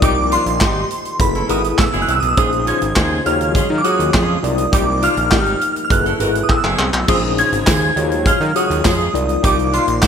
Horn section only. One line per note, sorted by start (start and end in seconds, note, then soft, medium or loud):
0.02 0.14 G3 loud
0.02 0.14 D#4 loud
0.02 0.14 G4 loud
0.31 0.43 F3 loud
0.31 0.43 A#3 medium
0.31 0.43 D4 loud
0.31 0.43 F4 loud
0.61 0.85 G3 medium
0.61 0.85 D#4 loud
0.61 0.84 G4 loud
1.34 1.46 A3 medium
1.34 1.46 C#4 medium
1.34 1.46 E4 medium
1.34 1.46 A4 medium
1.49 1.61 A#3 medium
1.49 1.61 D#4 medium
1.49 1.61 F#4 medium
1.49 1.61 A#4 medium
1.93 2.17 G#3 loud
1.93 2.17 C#4 loud
1.93 2.17 E4 loud
1.93 2.17 G#4 loud
2.37 2.49 G#3 loud
2.37 2.49 D#4 loud
2.37 2.49 F4 medium
2.37 2.49 G#4 loud
2.66 2.79 F3 medium
2.66 2.79 C#4 medium
2.66 2.79 F4 loud
2.96 3.20 G#3 loud
2.96 3.20 D#4 loud
2.96 3.20 F4 medium
2.96 3.20 G#4 loud
3.55 3.67 G#3 medium
3.55 3.67 C#4 loud
3.55 3.67 F4 loud
3.55 3.67 G#4 loud
3.84 4.08 F#3 loud
3.84 4.08 A#3 loud
3.84 4.08 C#4 loud
3.84 4.08 F#4 loud
4.14 4.37 G#3 loud
4.14 4.37 C#4 loud
4.14 4.37 F4 loud
4.14 4.37 G#4 loud
4.72 4.85 G3 loud
4.72 4.84 D#4 loud
4.72 4.84 G4 loud
5.02 5.14 F3 loud
5.02 5.14 A#3 loud
5.02 5.14 D4 loud
5.02 5.14 F4 loud
5.31 5.55 G3 medium
5.31 5.55 D#4 medium
5.31 5.55 G4 loud
6.05 6.17 A3 medium
6.05 6.17 C#4 medium
6.05 6.17 E4 medium
6.05 6.17 A4 loud
6.19 6.31 A#3 medium
6.19 6.31 D#4 medium
6.19 6.32 F#4 medium
6.19 6.31 A#4 medium
6.64 6.87 G#3 loud
6.64 6.88 C#4 loud
6.64 6.88 E4 medium
6.64 6.87 G#4 loud
7.08 7.20 G#3 medium
7.08 7.20 D#4 medium
7.08 7.20 F4 medium
7.08 7.20 G#4 loud
7.38 7.49 F3 medium
7.38 7.49 C#4 medium
7.38 7.50 F4 medium
7.67 7.91 G#3 loud
7.67 7.91 D#4 medium
7.67 7.91 F4 medium
7.67 7.91 G#4 loud
8.26 8.38 G#3 medium
8.26 8.38 C#4 loud
8.26 8.38 F4 medium
8.26 8.38 G#4 loud
8.55 8.79 F#3 medium
8.55 8.79 A#3 loud
8.55 8.79 C#4 loud
8.55 8.79 F#4 loud
8.85 9.09 G#3 loud
8.85 9.09 C#4 medium
8.85 9.08 F4 loud
8.85 9.09 G#4 loud
9.44 9.55 G3 loud
9.44 9.55 D#4 loud
9.44 9.55 G4 loud
9.73 9.85 F3 loud
9.73 9.85 A#3 medium
9.73 9.85 D4 medium
9.73 9.85 F4 loud
10.02 10.07 G3 loud
10.02 10.07 D#4 loud
10.02 10.07 G4 loud